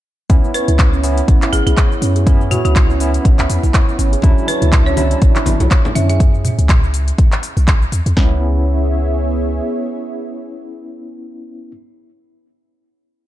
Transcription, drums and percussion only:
0.30 kick, closed hi-hat, cabasa
0.44 cabasa
0.54 open hi-hat, cabasa
0.68 closed hi-hat, cabasa
0.79 kick, clap, closed hi-hat, mid tom, cabasa
0.93 cabasa
1.04 open hi-hat, cabasa
1.18 closed hi-hat, cabasa
1.28 kick, closed hi-hat, cabasa
1.42 clap, closed hi-hat, cabasa
1.53 open hi-hat, cabasa
1.67 closed hi-hat, cabasa
1.77 kick, clap, closed hi-hat, cabasa
1.92 cabasa
2.02 open hi-hat, cabasa
2.16 closed hi-hat, cabasa
2.27 kick, closed hi-hat, cabasa
2.41 cabasa
2.51 mid tom, open hi-hat, cabasa
2.65 closed hi-hat, cabasa
2.76 kick, clap, closed hi-hat, mid tom, cabasa
2.90 cabasa
3.00 open hi-hat, cabasa
3.14 closed hi-hat, cabasa
3.25 kick, closed hi-hat, cabasa
3.39 clap, closed hi-hat, cabasa
3.50 open hi-hat, cabasa
3.63 open hi-hat, cabasa
3.74 kick, clap, closed hi-hat, cabasa
3.89 cabasa
3.99 open hi-hat, cabasa
4.13 closed hi-hat, cabasa
4.22 kick, closed hi-hat, muted conga, cabasa
4.38 cabasa
4.48 open hi-hat, muted conga, cabasa
4.62 closed hi-hat, high conga, cabasa
4.72 kick, clap, closed hi-hat, mid tom, cabasa
4.87 muted conga, cabasa
4.97 open hi-hat, high conga, cabasa
5.11 closed hi-hat, muted conga, cabasa
5.22 kick, closed hi-hat, cabasa
5.36 clap, closed hi-hat, muted conga, cabasa
5.46 open hi-hat, high conga, cabasa
5.60 closed hi-hat, muted conga, low conga, cabasa
5.71 kick, clap, closed hi-hat, cabasa
5.85 low conga, cabasa
5.96 open hi-hat, muted conga, high conga, cabasa
6.09 closed hi-hat, cabasa
6.20 kick, closed hi-hat, cabasa
6.34 cabasa
6.45 mid tom, open hi-hat, cabasa
6.59 closed hi-hat, cabasa
6.69 kick, clap, closed hi-hat, mid tom, cabasa
6.84 cabasa
6.94 open hi-hat, cabasa
7.08 closed hi-hat, cabasa
7.18 kick, closed hi-hat, cabasa
7.32 clap, closed hi-hat, cabasa
7.43 open hi-hat, cabasa
7.57 open hi-hat, cabasa
7.68 kick, clap, closed hi-hat, cabasa
7.82 cabasa
7.92 open hi-hat, cabasa
8.06 closed hi-hat, cabasa
8.17 kick, snare

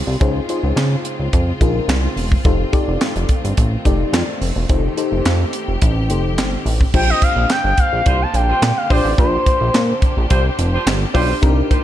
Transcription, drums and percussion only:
0.21 kick, closed hi-hat
0.49 closed hi-hat
0.77 snare, clap, closed hi-hat
1.05 closed hi-hat
1.33 kick, closed hi-hat
1.61 kick, closed hi-hat
1.89 snare, clap, closed hi-hat
2.17 open hi-hat
2.32 kick
2.45 kick, closed hi-hat
2.73 kick, closed hi-hat
3.01 snare, clap, closed hi-hat
3.16 closed hi-hat
3.29 kick, closed hi-hat
3.45 closed hi-hat
3.57 kick, closed hi-hat
3.85 kick, closed hi-hat
4.14 snare, clap, closed hi-hat
4.42 open hi-hat
4.69 kick, closed hi-hat
4.98 closed hi-hat
5.25 snare, clap, closed hi-hat
5.53 closed hi-hat
5.82 kick, closed hi-hat
6.10 closed hi-hat
6.38 snare, clap, closed hi-hat
6.66 open hi-hat
6.81 kick
6.94 kick, crash
7.22 kick, closed hi-hat
7.50 snare, clap, closed hi-hat
7.78 kick, closed hi-hat
8.06 kick, closed hi-hat
8.34 closed hi-hat
8.62 snare, clap, closed hi-hat
8.90 kick, open hi-hat
9.18 kick, closed hi-hat
9.46 kick, closed hi-hat
9.74 snare, clap, closed hi-hat
10.02 kick, closed hi-hat
10.30 kick, closed hi-hat
10.59 closed hi-hat
10.87 snare, clap, closed hi-hat
11.15 kick, open hi-hat
11.43 kick, closed hi-hat
11.71 kick, closed hi-hat

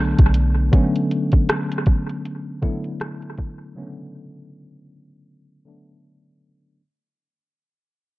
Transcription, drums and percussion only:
0.19 kick, closed hi-hat
0.34 closed hi-hat
0.73 kick, closed hi-hat
0.96 closed hi-hat
1.11 closed hi-hat
1.32 kick, closed hi-hat
1.49 cross-stick, closed hi-hat
1.72 closed hi-hat
1.86 kick, closed hi-hat
2.09 closed hi-hat
2.25 closed hi-hat
2.62 kick, closed hi-hat
2.84 closed hi-hat
3.00 cross-stick, closed hi-hat
3.22 closed hi-hat
3.38 kick, closed hi-hat

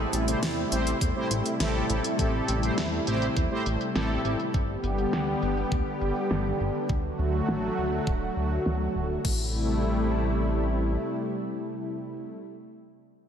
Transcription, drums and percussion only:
0.13 closed hi-hat
0.28 closed hi-hat
0.43 snare, closed hi-hat
0.72 closed hi-hat
0.87 closed hi-hat
1.01 kick, closed hi-hat
1.31 closed hi-hat
1.46 closed hi-hat
1.60 snare, closed hi-hat
1.90 closed hi-hat
2.04 closed hi-hat
2.19 kick, closed hi-hat
2.48 closed hi-hat
2.63 closed hi-hat
2.78 snare, closed hi-hat
3.07 closed hi-hat
3.22 closed hi-hat
3.37 kick, closed hi-hat
3.66 closed hi-hat
3.81 closed hi-hat
3.96 snare, closed hi-hat
4.25 closed hi-hat
4.40 closed hi-hat
4.54 kick, closed hi-hat
4.84 closed hi-hat
4.98 closed hi-hat
5.13 snare, closed hi-hat
5.42 closed hi-hat
5.57 closed hi-hat
5.72 kick, closed hi-hat
6.01 closed hi-hat
6.16 closed hi-hat
6.31 snare, closed hi-hat
6.60 closed hi-hat
6.75 closed hi-hat
6.89 kick, closed hi-hat
7.19 closed hi-hat
7.34 closed hi-hat
7.49 snare, closed hi-hat
8.07 kick
8.37 closed hi-hat
8.66 snare
9.25 kick, crash

